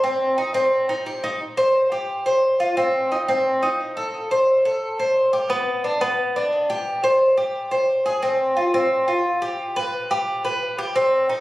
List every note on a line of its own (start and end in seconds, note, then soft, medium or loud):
0.04 0.36 C4 medium
0.38 0.54 D#4 medium
0.54 0.87 C4 medium
0.89 1.05 D#4 medium
1.06 1.22 G4 medium
1.24 1.40 D#4 medium
1.57 1.90 C5 medium
1.92 2.24 G4 medium
2.26 2.58 C5 medium
2.60 2.76 F4 medium
2.77 3.10 C4 medium
3.12 3.27 D#4 medium
3.28 3.61 C4 medium
3.63 3.95 D#4 medium
3.97 4.29 A4 medium
4.31 4.63 C5 medium
4.65 4.98 A4 medium
4.99 5.32 C5 medium
5.33 5.49 G4 medium
5.50 5.82 B3 medium
5.84 6.00 D4 medium
6.01 6.34 B3 medium
6.36 6.68 D4 medium
6.70 7.02 G4 medium
7.04 7.36 C5 medium
7.37 7.70 G4 medium
7.71 8.04 C5 medium
8.06 8.22 G#4 medium
8.23 8.55 C4 medium
8.57 8.73 F4 medium
8.74 9.07 C4 medium
9.08 9.41 F4 medium
9.42 9.75 G4 medium
9.76 10.09 B4 medium
10.11 10.43 G4 medium
10.45 10.77 B4 medium
10.79 10.95 G4 medium
10.96 11.28 C4 medium
11.29 11.40 D#4 medium